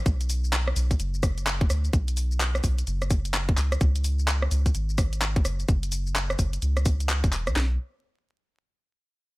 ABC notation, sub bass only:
X:1
M:4/4
L:1/16
Q:"Swing 16ths" 1/4=128
K:F#m
V:1 name="Sub bass" clef=bass
B,,,6 B,,,2 F,,,6 D,,2 | B,,,6 B,,,2 F,,,6 C,,2 | C,,6 C,,2 G,,,6 F,,,2 | F,,,6 F,,,2 C,,4- C,, F,,, E,,, C,, |
B,,,2 z12 z2 |]